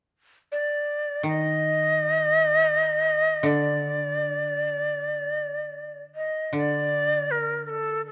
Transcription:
0.52 1.23 D5 medium
1.23 4.02 D#3 soft
1.23 3.48 D#5 medium
3.43 6.25 D3 soft
3.43 6.03 D5 medium
6.15 6.53 D#5 medium
6.53 8.12 D3 soft
6.57 7.33 D5 medium
7.31 7.63 A#4 medium
7.66 8.06 A4 medium
7.66 7.71 A#4 soft
8.07 8.12 A4 medium

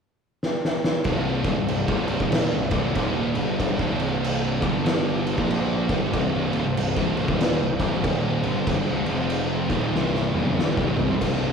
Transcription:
0.43 snare medium
0.65 snare medium
0.84 snare loud
1.04 1.42 C1 medium
1.04 1.43 C2 medium
1.04 1.44 G2 medium
1.04 1.44 C3 medium
1.04 4.59 C4 medium
1.04 4.59 G4 medium
1.04 4.59 D5 medium
1.04 kick loud
1.04 crash medium
1.44 1.56 D#1 loud
1.44 1.56 D#2 medium
1.44 1.56 A#2 loud
1.44 kick loud
1.44 crash medium
1.56 1.68 C1 medium
1.56 1.68 C2 medium
1.56 1.68 G2 medium
1.68 1.87 C1 medium
1.68 1.86 C2 medium
1.68 1.87 G2 medium
1.68 crash medium
1.88 2.18 C1 medium
1.88 2.19 C2 medium
1.88 2.20 G2 medium
1.88 2.20 C3 loud
1.88 kick loud
2.08 crash medium
2.19 2.50 D#1 loud
2.19 2.51 D#2 medium
2.19 2.51 A#2 medium
2.19 2.51 D#3 loud
2.19 kick loud
2.32 snare loud
2.32 crash loud
2.52 2.70 C1 medium
2.52 2.70 C2 medium
2.52 2.71 G2 medium
2.71 2.94 C1 medium
2.71 2.95 C2 medium
2.71 2.96 G2 medium
2.71 2.96 C3 medium
2.71 kick loud
2.71 crash medium
2.95 3.32 D#1 loud
2.95 3.34 D#2 loud
2.95 3.34 A#2 medium
2.95 3.35 D#3 medium
2.95 kick loud
2.95 crash medium
3.34 3.76 G1 loud
3.34 3.77 G2 medium
3.34 3.78 D3 loud
3.34 3.78 G3 loud
3.34 crash medium
3.60 kick loud
3.60 crash medium
3.78 4.59 C1 medium
3.78 4.60 C2 medium
3.78 4.59 G2 medium
3.78 4.61 C3 medium
3.78 kick medium
4.00 crash medium
4.24 crash medium
4.61 5.34 G1 medium
4.61 5.36 G2 medium
4.61 5.37 D3 medium
4.61 5.37 G3 loud
4.61 5.38 D4 medium
4.61 kick loud
4.61 crash medium
4.65 5.39 G3 medium
4.65 5.39 A4 medium
4.86 snare loud
4.86 crash medium
5.27 crash medium
5.37 5.86 A#1 medium
5.37 5.88 A#2 medium
5.37 5.88 F3 loud
5.37 5.88 A#3 loud
5.37 9.03 C4 medium
5.37 9.03 G4 medium
5.37 6.64 D5 medium
5.37 kick medium
5.51 crash medium
5.89 6.12 G1 medium
5.89 6.13 G2 medium
5.89 6.13 D3 medium
5.89 6.14 G3 loud
5.89 kick loud
5.89 crash medium
6.13 6.50 C1 medium
6.13 6.52 C2 medium
6.13 6.52 G2 medium
6.13 6.52 C3 medium
6.13 kick loud
6.13 crash medium
6.52 6.65 D#1 loud
6.52 6.64 D#2 medium
6.52 6.65 A#2 medium
6.52 crash medium
6.66 6.77 C1 medium
6.66 6.76 C2 medium
6.66 6.77 G2 medium
6.66 9.04 C5 medium
6.77 6.96 C1 medium
6.77 6.96 C2 medium
6.77 6.96 G2 medium
6.77 crash medium
6.96 7.26 C1 loud
6.96 7.28 C2 loud
6.96 7.28 G2 loud
6.96 7.29 C3 loud
6.96 kick loud
7.17 crash medium
7.28 7.58 D#1 loud
7.28 7.59 D#2 medium
7.28 7.59 A#2 medium
7.28 7.60 D#3 medium
7.28 kick loud
7.41 snare loud
7.41 crash medium
7.60 7.79 C1 medium
7.60 7.78 C2 medium
7.60 7.79 G2 medium
7.79 8.02 C1 medium
7.79 8.03 C2 medium
7.79 8.03 G2 medium
7.79 8.04 C3 loud
7.79 kick loud
7.79 crash medium
8.03 8.41 D#1 loud
8.03 8.42 D#2 medium
8.03 8.42 A#2 loud
8.03 8.42 D#3 medium
8.03 kick loud
8.03 crash medium
8.43 8.66 G1 medium
8.43 8.67 G2 medium
8.43 8.67 D3 loud
8.43 8.67 G3 loud
8.43 crash medium
8.66 8.85 G1 loud
8.66 8.85 G2 medium
8.66 8.87 D3 loud
8.66 kick loud
8.66 crash medium
8.86 9.06 C1 loud
8.86 9.05 C2 medium
8.86 9.05 G2 loud
9.05 9.67 F1 loud
9.05 9.68 F2 loud
9.05 9.69 C3 medium
9.05 9.69 F3 loud
9.05 9.70 F4 medium
9.05 9.69 C5 medium
9.05 9.70 G5 medium
9.05 crash medium
9.30 crash medium
9.68 9.92 D#1 loud
9.68 9.93 D#2 medium
9.68 9.93 A#2 loud
9.68 9.94 D#3 medium
9.68 11.20 C4 medium
9.68 11.20 G4 medium
9.68 11.20 D5 medium
9.68 kick medium
9.68 crash medium
9.93 10.32 C1 loud
9.93 10.32 C2 loud
9.93 10.32 G2 loud
9.93 10.33 C3 loud
9.93 snare medium
10.15 snare medium
10.32 10.44 D#1 loud
10.32 10.44 D#2 medium
10.32 10.45 A#2 loud
10.32 mid tom medium
10.45 10.57 F#1 loud
10.45 10.57 F#2 medium
10.45 10.57 C#3 loud
10.45 mid tom medium
10.57 10.76 G1 loud
10.57 10.75 G2 medium
10.57 10.76 D3 medium
10.57 snare medium
10.76 11.07 C1 medium
10.76 11.08 C2 loud
10.76 11.08 G2 loud
10.76 11.07 C3 loud
10.76 kick medium
10.97 floor tom loud
11.08 11.20 C2 medium
11.08 11.20 C3 medium
11.08 11.20 G3 loud
11.08 floor tom medium
11.21 11.53 C1 medium
11.21 11.53 C2 medium
11.21 11.53 G2 medium
11.21 11.53 C3 loud
11.21 11.53 C4 medium
11.21 11.53 G4 medium
11.21 11.53 D5 medium
11.21 kick medium
11.21 crash loud
11.21 crash medium

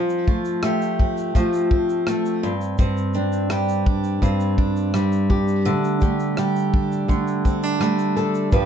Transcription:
0.00 1.34 F3 medium
0.00 2.50 F3 medium
0.00 0.28 C4 soft
0.09 shaker soft
0.27 1.35 A3 medium
0.27 2.50 F4 medium
0.27 kick medium
0.45 shaker medium
0.63 2.06 A3 medium
0.63 3.50 G4 medium
0.63 cross-stick medium
0.63 shaker medium
0.82 shaker soft
0.99 1.70 C4 medium
0.99 kick medium
1.17 shaker soft
1.35 2.50 F3 medium
1.35 2.06 A3 medium
1.35 kick medium
1.35 shaker medium
1.53 shaker soft
1.71 2.43 C4 medium
1.71 kick medium
1.89 shaker soft
2.07 2.50 A3 medium
2.07 2.43 A3 soft
2.07 cross-stick loud
2.07 shaker medium
2.25 shaker soft
2.43 2.78 G2 medium
2.43 2.78 C4 medium
2.43 shaker soft
2.61 shaker soft
2.78 4.21 G2 medium
2.78 3.13 C4 medium
2.78 kick medium
2.78 shaker medium
2.97 shaker soft
3.14 4.21 C4 medium
3.14 6.01 D4 medium
3.14 shaker soft
3.32 shaker medium
3.50 4.94 G3 medium
3.50 6.05 G4 medium
3.50 cross-stick loud
3.50 shaker medium
3.69 shaker soft
3.86 4.58 D4 medium
3.86 kick medium
4.04 shaker soft
4.22 5.73 G2 medium
4.22 4.93 C4 medium
4.22 kick medium
4.22 shaker medium
4.40 shaker soft
4.58 5.29 D4 medium
4.58 kick medium
4.76 shaker soft
4.94 6.37 G3 medium
4.94 5.65 C4 medium
4.94 cross-stick medium
4.94 shaker medium
5.12 shaker soft
5.30 6.73 D4 soft
5.30 6.01 G4 medium
5.30 kick medium
5.48 shaker soft
5.65 7.08 D3 medium
5.65 6.01 A3 medium
5.65 shaker medium
5.84 shaker soft
6.01 7.08 A3 medium
6.01 8.65 G4 medium
6.01 kick medium
6.01 shaker soft
6.20 shaker soft
6.37 7.80 G3 medium
6.37 8.53 G4 soft
6.37 cross-stick medium
6.37 shaker medium
6.56 shaker soft
6.74 7.45 D4 medium
6.74 kick medium
6.92 shaker soft
7.08 8.65 D3 medium
7.08 7.80 A3 medium
7.08 kick medium
7.08 shaker medium
7.27 shaker soft
7.45 7.63 C4 soft
7.45 kick medium
7.45 shaker soft
7.63 8.16 D4 soft
7.63 shaker soft
7.80 8.65 G3 medium
7.80 8.60 A3 medium
7.80 cross-stick medium
7.80 shaker medium
7.99 shaker soft
8.16 8.65 D4 soft
8.16 8.53 A4 medium
8.16 shaker soft
8.34 shaker soft
8.52 8.65 G2 medium
8.52 8.65 F3 medium
8.52 8.65 G4 medium
8.52 8.65 B4 medium
8.52 kick loud
8.52 shaker medium

